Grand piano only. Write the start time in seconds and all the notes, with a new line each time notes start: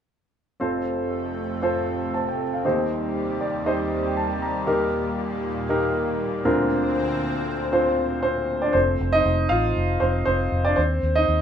0.60 F1 F2 C4 F4 A4 C5
1.62 C4 F4 A4 C5
2.14 C5 A5
2.29 G5
2.54 A4 F5
2.65 D#2 D#3 C4 D#4 G4 C5
3.41 D5
3.66 C4 D#4 G4 C5 D#5
4.06 G5
4.17 A5
4.42 A#5
4.67 D#2 D#3 A#3 D#4 G4 A#4
5.69 A#3 D#4 G4 A#4
6.44 D2 D3 C4 D4 F4 A#4
7.72 C4 D4 F4 C5
8.23 C4 C5
8.62 D4 D5
8.73 F3 A3 C4 C5
9.13 D#4 D#5
9.49 F4 F5
10.00 C4 C5
10.26 C4 C5
10.65 D4 D5
10.76 C4 C5
11.16 D#4 D#5